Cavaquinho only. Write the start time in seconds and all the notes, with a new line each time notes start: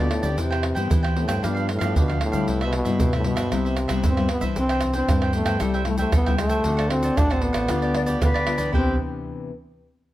0.00 G4 B4 D5
0.23 G4 B4 D5
0.37 E4 B4 C5 G5
0.50 B4 C5 G5
0.64 muted cavaquinho stroke
0.75 B4 C5 G5
0.90 E4 B4 C5 G5
1.03 B4 C5 G5
1.28 B4 C5 G5
1.42 D4 G4 B4 F5
1.55 G4 B4 F5
1.67 muted cavaquinho stroke
1.79 G4 B4 F5
1.95 D4 G4 B4 F5
2.08 G4 B4 F5
2.32 G4 B4 F5
2.48 E4 B4 C5 E5
2.62 B4 C5 E5
2.73 muted cavaquinho stroke
2.85 B4 C5 E5
3.00 E4 B4 C5 E5
3.14 B4 C5 E5
3.36 B4 C5 E5
3.52 E4 B4 C5 E5
3.65 B4 C5 E5
3.77 muted cavaquinho stroke
3.88 B4 C5 E5
4.04 E4 B4 C5 E5
4.17 B4 C5 E5
4.41 B4 C5 E5
4.56 E4 B4 C5 G5
4.70 B4 C5 G5
4.82 muted cavaquinho stroke
4.95 B4 C5 G5
5.09 E4 B4 C5 G5
5.23 B4 C5 G5
5.45 B4 C5 G5
5.60 A4 C5 E5 G5
5.74 C5 E5 G5
5.85 muted cavaquinho stroke
5.99 C5 E5 G5
6.13 A4 C5 E5 G5
6.26 C5 E5 G5
6.50 C5 E5 G5
6.65 D4 C5 D5 F#5
6.77 C5 D5 F#5
6.90 muted cavaquinho stroke
7.03 C5 D5 F#5
7.17 D4 C5 D5 F#5
7.30 C5 D5 F#5
7.53 C5 D5 F#5
7.68 F4 G4 B4 D5
7.82 G4 B4 D5
7.94 muted cavaquinho stroke
8.06 G4 B4 D5
8.21 F4 G4 B4 D5
8.34 G4 B4 D5
8.57 G4 B4 D5
8.73 E4 B4 C5 G5